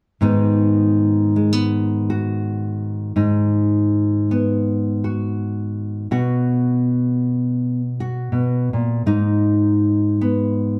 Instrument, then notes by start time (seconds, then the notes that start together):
nylon-string guitar
0.21 G#2 D#3 B3 D#4
1.36 G#3
1.53 B3
2.10 F#4
3.16 G#2 D#4
4.31 B3
5.04 F#4
6.11 B2 F#4
8.00 F#4
8.32 B2
8.73 A#2
9.06 G#2 D#4
10.21 B3